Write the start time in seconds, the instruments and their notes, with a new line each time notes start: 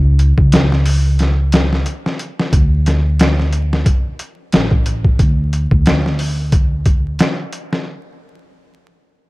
Already playing: upright bass C#2
0.19 closed hi-hat
0.38 upright bass C#2, kick
0.52 snare, closed hi-hat
0.72 snare
0.86 open hi-hat
1.19 snare, closed hi-hat
1.52 snare, closed hi-hat
1.73 snare
1.86 closed hi-hat
2.06 snare
2.19 closed hi-hat
2.39 snare
2.53 upright bass D2, kick, closed hi-hat
2.86 snare, closed hi-hat
3.19 snare, closed hi-hat
3.39 snare
3.53 closed hi-hat
3.73 snare
3.86 kick, closed hi-hat
4.19 closed hi-hat
4.52 upright bass A1, snare, closed hi-hat
4.71 kick
4.86 closed hi-hat
5.05 kick
5.19 upright bass D2, kick, closed hi-hat
5.53 closed hi-hat
5.71 upright bass D2, kick
5.86 snare, closed hi-hat
6.06 snare
6.19 open hi-hat
6.52 kick, closed hi-hat
6.86 kick, closed hi-hat
7.19 snare, closed hi-hat
7.52 closed hi-hat
7.73 snare